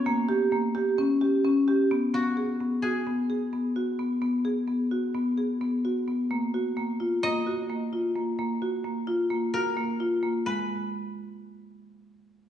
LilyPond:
<<
  \new Staff \with { instrumentName = "Koto" } { \time 9/8 \key gis \dorian \tempo 4. = 87 << { r1 r8 | r1 r8 | r1 r8 | r1 r8 |
r1 r8 | b'1~ b'8 | } \\ { cis''8 r1 | fis'4. gis'2.~ | gis'16 r1 r16 | r2 dis''2~ dis''8~ |
dis''8. r4. r16 ais'2~ | ais'8 r1 | } >> }
  \new Staff \with { instrumentName = "Marimba" } { \time 9/8 \key gis \dorian ais8 g'8 ais8 g'8 cis'8 g'8 cis'8 g'8 b8 | b8 gis'8 b8 fis'8 b8 gis'8 b8 fis'8 b8 | b8 gis'8 b8 fis'8 b8 gis'8 b8 fis'8 b8 | ais8 fis'8 ais8 eis'8 ais8 fis'8 ais8 eis'8 ais8 |
ais8 fis'8 ais8 eis'8 ais8 fis'8 ais8 eis'8 ais8 | gis8 r1 | }
>>